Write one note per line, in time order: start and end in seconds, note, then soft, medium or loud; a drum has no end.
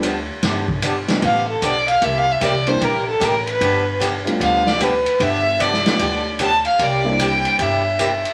0.00 0.27 D2 medium
0.00 0.14 D3 medium
0.00 0.14 F3 medium
0.00 0.14 B3 medium
0.00 0.14 D4 medium
0.00 0.15 G4 medium
0.00 hi-hat pedal medium
0.00 ride medium
0.43 1.06 G1 medium
0.43 0.65 D3 medium
0.43 0.65 F3 medium
0.43 0.65 B3 medium
0.43 0.65 D4 medium
0.43 0.65 G4 medium
0.43 kick soft
0.43 snare soft
0.43 ride medium
0.68 kick medium
0.82 0.94 D3 medium
0.82 0.94 F3 medium
0.82 0.94 B3 medium
0.82 0.95 D4 medium
0.82 0.95 G4 medium
0.82 kick soft
0.82 hi-hat pedal medium
0.82 ride medium
1.08 1.21 F3 medium
1.08 1.21 G3 medium
1.08 1.21 A3 medium
1.08 1.21 B3 medium
1.08 1.21 D4 medium
1.08 snare soft
1.08 ride soft
1.22 1.56 A1 medium
1.22 1.44 D3 medium
1.22 1.44 F3 medium
1.22 1.45 B3 medium
1.22 1.45 D4 medium
1.22 1.45 G4 medium
1.22 1.47 F5 medium
1.22 kick soft
1.22 ride medium
1.48 1.66 A4 soft
1.61 1.96 B1 medium
1.61 1.73 D3 medium
1.61 1.74 F3 medium
1.61 1.74 B3 medium
1.61 1.74 D4 medium
1.61 1.74 G4 medium
1.61 1.88 D5 medium
1.61 kick soft
1.61 hi-hat pedal medium
1.61 ride medium
1.88 2.05 F5 loud
1.88 ride medium
2.01 2.33 C2 medium
2.01 2.23 C3 medium
2.01 2.23 G3 medium
2.01 2.24 A#3 medium
2.01 2.24 E4 medium
2.01 2.24 G4 medium
2.01 2.19 E5 medium
2.01 kick soft
2.01 ride medium
2.18 2.33 F5 loud
2.31 2.45 E5 medium
2.40 2.75 C2 medium
2.40 2.53 C3 medium
2.40 2.53 G3 medium
2.40 2.53 A#3 medium
2.40 2.53 E4 medium
2.40 2.53 G4 medium
2.40 2.69 D5 medium
2.40 kick soft
2.40 hi-hat pedal medium
2.40 ride medium
2.67 2.80 E3 medium
2.67 2.80 G3 medium
2.67 2.80 A#3 medium
2.67 2.80 C4 medium
2.67 2.80 D4 medium
2.67 2.85 C5 medium
2.67 ride soft
2.80 3.15 A#1 medium
2.80 3.03 C3 medium
2.80 3.03 G3 medium
2.80 3.03 A#3 medium
2.80 3.03 E4 medium
2.80 3.03 G4 medium
2.80 3.07 A#4 medium
2.80 kick soft
2.80 ride medium
3.07 3.25 A4 medium
3.20 3.55 A1 medium
3.20 3.32 C3 medium
3.20 3.32 G3 medium
3.20 3.33 A#3 medium
3.20 3.33 E4 medium
3.20 3.33 G4 medium
3.20 3.47 A#4 medium
3.20 kick soft
3.20 hi-hat pedal medium
3.20 ride medium
3.47 3.97 B4 medium
3.47 ride soft
3.60 4.25 G1 medium
3.60 3.83 D3 medium
3.60 3.83 F3 medium
3.60 3.83 B3 medium
3.60 3.83 D4 medium
3.60 3.83 G4 medium
3.60 kick soft
3.60 ride medium
3.99 4.12 D3 medium
3.99 4.12 F3 medium
3.99 4.12 B3 medium
3.99 4.12 D4 medium
3.99 4.12 G4 medium
3.99 kick soft
3.99 hi-hat pedal medium
3.99 ride medium
4.25 4.77 G3 medium
4.25 4.77 A3 medium
4.25 4.77 B3 medium
4.25 4.77 D4 medium
4.25 4.78 F4 medium
4.25 ride soft
4.40 5.04 D2 medium
4.40 4.62 D3 medium
4.40 4.62 F3 medium
4.40 4.62 B3 medium
4.40 4.63 D4 medium
4.40 4.63 G4 medium
4.40 4.68 F5 medium
4.40 kick soft
4.40 ride medium
4.66 4.84 D5 medium
4.66 snare soft
4.79 4.91 D3 medium
4.79 4.92 F3 medium
4.79 4.92 B3 medium
4.79 4.92 D4 medium
4.79 4.92 G4 medium
4.79 5.24 B4 medium
4.79 kick soft
4.79 hi-hat pedal medium
4.79 ride medium
5.06 ride soft
5.19 5.84 G1 medium
5.19 5.42 D3 medium
5.19 5.42 F3 medium
5.19 5.42 B3 medium
5.19 5.42 D4 medium
5.19 5.42 G4 medium
5.19 5.63 E5 loud
5.19 kick soft
5.19 ride medium
5.59 5.71 D3 medium
5.59 5.71 F3 medium
5.59 5.71 B3 medium
5.59 5.72 D4 medium
5.59 5.71 G4 medium
5.59 6.26 D5 medium
5.59 kick soft
5.59 hi-hat pedal medium
5.59 ride medium
5.73 snare soft
5.85 5.98 G3 medium
5.85 5.98 A3 medium
5.85 5.98 B3 medium
5.85 5.98 D4 medium
5.85 5.99 F4 medium
5.85 snare soft
5.85 ride soft
5.98 6.63 D2 medium
5.98 6.21 D3 medium
5.98 6.21 F3 medium
5.98 6.21 B3 medium
5.98 6.22 D4 medium
5.98 6.22 G4 medium
5.98 kick soft
5.98 ride medium
6.39 6.51 D3 medium
6.39 6.51 F3 medium
6.39 6.51 B3 medium
6.39 6.51 D4 medium
6.39 6.51 G4 medium
6.39 6.65 A5 loud
6.39 kick soft
6.39 hi-hat pedal medium
6.39 ride medium
6.65 6.85 F5 medium
6.65 ride soft
6.78 7.43 C2 medium
6.78 7.01 C3 medium
6.78 7.01 G3 medium
6.78 7.01 A#3 medium
6.78 7.01 E4 medium
6.78 7.02 G4 medium
6.78 kick soft
6.78 ride medium
6.83 7.23 D5 medium
7.04 7.56 G3 medium
7.04 7.56 A#3 medium
7.04 7.56 C4 medium
7.04 7.56 D4 medium
7.04 7.57 E4 medium
7.19 7.31 C3 medium
7.19 7.31 G3 medium
7.19 7.31 A#3 medium
7.19 7.31 E4 medium
7.19 7.31 G4 medium
7.19 7.63 G5 loud
7.19 kick soft
7.19 hi-hat pedal medium
7.19 ride medium
7.45 ride soft
7.59 8.23 G1 medium
7.59 7.81 C3 medium
7.59 7.81 G3 medium
7.59 7.81 A#3 medium
7.59 7.81 E4 medium
7.59 7.81 G4 medium
7.59 8.26 E5 medium
7.59 kick soft
7.59 ride medium
7.99 8.10 C3 medium
7.99 8.11 G3 medium
7.99 8.11 A#3 medium
7.99 8.11 E4 medium
7.99 8.11 G4 medium
7.99 kick soft
7.99 hi-hat pedal medium
7.99 ride medium
8.25 ride soft